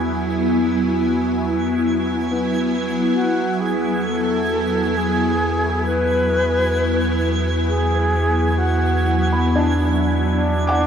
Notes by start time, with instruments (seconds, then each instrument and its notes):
Already playing: sub bass E2, ambient pad F#3 B3 E4 G#5, felt piano B3 E4 G#4, synth texture G#6
2.31 felt piano B3
3.13 sub bass E2, alto flute F#4
3.61 alto flute G#4
4.05 alto flute A4
4.97 alto flute G#4
5.86 alto flute B4
7.69 alto flute G#4
8.58 alto flute F#4
9.32 felt piano B5
9.56 felt piano D4
10.33 alto flute D4
10.67 felt piano F#5 D6